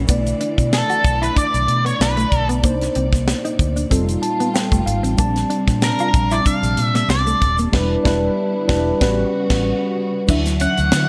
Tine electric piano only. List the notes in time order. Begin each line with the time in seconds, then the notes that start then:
0.07 A3 D4 E4 D5
2.62 A#3 D4 D#4 C5
3.90 G3 D#4 F4 A4
4.22 A5
4.54 G5
4.86 F5
5.17 G3 C4 D4 A5
7.72 G3 D4 E4 B4
8.04 G3 D4 E4 B4
8.67 G3 D4 E4 B4
9.00 G3 C#4 F#4 B4
10.27 F#3 D4 E4 E5